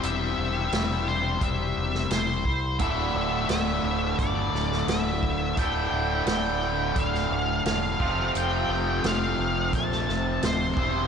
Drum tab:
HH |x---x---x---x---|x---x---x---x---|x---x---x---x---|x---x---x---x---|
SD |----o------oo---|----o-----ooo---|----o----o--o---|----o----oo-o---|
BD |--------o-----o-|o-------o-----o-|o-------o-----o-|--------o-----o-|